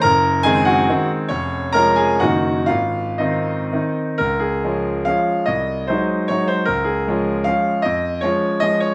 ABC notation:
X:1
M:3/4
L:1/8
Q:1/4=144
K:Db
V:1 name="Grand piano"
[Bb]2 [Aa] [Gg]2 z | [Dd]2 [Bb] [Aa] [Gg]2 | [Ff]2 [Ee]3 z | B A3 f2 |
e2 c2 d c | B A3 f2 | e2 d2 e d |]
V:2 name="Grand piano" clef=bass
G,,,2 [E,A,C]2 [E,A,C]2 | F,,,2 [F,A,D]2 [G,,,E,B,E]2 | A,,,2 [E,C]2 [E,CE]2 | D,,2 [F,A,D]2 [F,A,D]2 |
C,,2 [G,A,E]2 [G,A,E]2 | D,,2 [F,A,D]2 [F,A,D]2 | F,,2 [F,A,D]2 [F,A,D]2 |]